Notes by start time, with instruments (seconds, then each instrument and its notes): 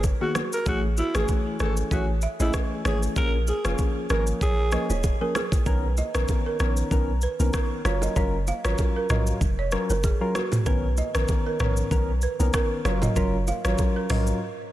Already playing: 808-style bass F#1
0.04 kick, high bongo, shaker
0.21 synth keys D#3 A#3 B3 F#4, alto saxophone F#4, balafon G#4
0.35 balafon F#4, cross-stick, low bongo, low conga, shaker
0.53 alto saxophone A#4, shaker
0.66 808-style bass A1, synth keys E3 A3 C#4 G#4, alto saxophone F#4, balafon G#4, kick, low conga, shaker
0.97 alto saxophone E4, balafon F#4, low bongo, shaker
1.14 808-style bass G#1, synth keys E3 A3 C#4 G#4, balafon G#4, alto saxophone G#4, cross-stick, shaker
1.28 kick, high bongo, shaker
1.60 808-style bass G#1, synth keys E3 A3 C#4 G#4, balafon A4, alto saxophone A4, cross-stick, shaker
1.77 shaker
1.91 808-style bass A1, synth keys E3 A3 C#4 G#4, alto saxophone F#4, balafon C#5, kick, low conga, shaker
2.22 balafon E5, shaker
2.40 808-style bass A1, synth keys E3 A3 C#4 G#4, alto saxophone E4, balafon D#5, low bongo, shaker
2.54 kick, cross-stick, high bongo, shaker
2.85 808-style bass G#1, synth keys E3 A3 C#4 G#4, alto saxophone G#4, balafon C#5, cross-stick, low bongo, low conga, shaker
3.03 shaker
3.16 808-style bass A#1, synth keys F3 A#3 C#4 G#4, balafon A#4, alto saxophone A#4, kick, low conga, shaker
3.47 balafon G#4, alto saxophone G#4, low bongo, shaker
3.64 808-style bass F1, synth keys F3 A#3 C#4 G#4, alto saxophone F4, balafon G#4, cross-stick, shaker
3.78 kick, high bongo, shaker
4.10 808-style bass G#1, synth keys F3 A#3 C#4 G#4, balafon A#4, alto saxophone A#4, cross-stick, shaker
4.27 shaker
4.41 808-style bass A#1, alto saxophone G#4, balafon C#5, kick, low conga, shaker
4.72 synth keys F3 A#3 C#4 G#4, balafon D#5, cross-stick, shaker
4.90 808-style bass D#1, balafon C#5, low bongo, shaker
5.04 kick, high bongo, shaker
5.21 synth keys F3 A#3 C#4 G#4, balafon A#4
5.35 balafon G#4, cross-stick, low bongo, low conga, shaker
5.52 kick, low bongo, shaker
5.66 808-style bass B1, synth keys D#3 B3 C#4 A#4, balafon B4, kick, low conga, shaker
5.97 balafon D#5, low bongo, shaker
6.15 808-style bass A#1, synth keys D#3 B3 C#4 A#4, balafon B4, cross-stick, shaker
6.28 kick, high bongo, shaker
6.46 balafon A#4
6.60 808-style bass A#1, synth keys D#3 B3 C#4 A#4, balafon C#5, cross-stick, shaker
6.77 shaker
6.91 808-style bass B1, synth keys D#3 B3 C#4 A#4, kick, low conga, shaker
7.22 balafon B4, shaker
7.39 808-style bass B1, synth keys D#3 B3 C#4 A#4, low bongo, shaker
7.54 balafon A#4, kick, cross-stick, high bongo, shaker
7.85 808-style bass F#1, synth keys F#3 C#4 F4 A#4, balafon C#5, cross-stick, high bongo, low bongo, low conga, shaker
8.02 balafon D#5, high bongo, low bongo, shaker
8.16 808-style bass F#1, synth keys F#3 C#4 F4 A#4, balafon C#5, kick, low conga, shaker
8.47 balafon F5, low bongo, shaker
8.64 808-style bass G#1, synth keys F#3 C#4 F4 A#4, balafon C#5, cross-stick, shaker
8.78 kick, high bongo, shaker
8.96 balafon A#4
9.10 808-style bass A#1, synth keys F#3 C#4 F4 A#4, balafon D#5, cross-stick, mid tom, shaker
9.27 shaker
9.41 808-style bass F1, kick, low conga, shaker
9.59 balafon C#5
9.72 synth keys F#3 C#4 F4 A#4, cross-stick, shaker
9.90 808-style bass F#1, balafon A#4, low bongo, shaker
10.04 balafon G#4, kick, high bongo, shaker
10.21 synth keys F#3 C#4 F4 A#4
10.35 balafon F#4, cross-stick, high bongo, low bongo, low conga, shaker
10.52 mid tom, high bongo, low bongo, shaker
10.66 808-style bass B1, synth keys D#3 B3 C#4 A#4, balafon B4, kick, low conga, shaker
10.97 balafon D#5, low bongo, shaker
11.15 808-style bass A#1, synth keys D#3 B3 C#4 A#4, balafon B4, cross-stick, shaker
11.28 kick, high bongo, shaker
11.46 balafon A#4
11.60 808-style bass A#1, synth keys D#3 B3 C#4 A#4, balafon C#5, cross-stick, mid tom, shaker
11.77 shaker
11.91 808-style bass B1, synth keys D#3 B3 C#4 A#4, kick, low conga, shaker
12.22 balafon B4, shaker
12.39 808-style bass B1, synth keys D#3 B3 C#4 A#4, low bongo, shaker
12.54 balafon A#4, kick, cross-stick, high bongo, shaker
12.85 808-style bass F#1, synth keys F#3 C#4 F4 A#4, balafon C#5, cross-stick, high bongo, low bongo, low conga, shaker
13.02 balafon D#5, mid tom, high bongo, low bongo, shaker
13.16 808-style bass F#1, synth keys F#3 C#4 F4 A#4, balafon C#5, kick, low conga, shaker
13.47 balafon F5, low bongo, shaker
13.64 808-style bass G#1, synth keys F#3 C#4 F4 A#4, balafon C#5, cross-stick, shaker
13.78 kick, high bongo, shaker
13.96 balafon A#4
14.10 808-style bass A#1, synth keys F#3 C#4 F4 A#4, balafon D#5, cross-stick, mid tom, open hi-hat, shaker
14.27 shaker